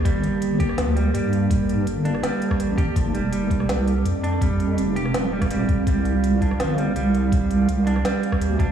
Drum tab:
HH |x-x-x-x-x-x-x-x-|x-x-x-x-x-x-x-x-|x-x-x-x-x-x-x-x-|x-x-x-x-x--xx-x-|
SD |-------ro-------|-------ro--r----|-------ro-------|-------ro--r----|
BD |o-----o---------|o----------o--o-|o-----o---------|o----------o--o-|

HH |x-x-x-x-x-x-x-x-|x-x-x-x-x-x-x-x-|
SD |-------ro-------|-------ro--r----|
BD |o-----o---------|o----------o--o-|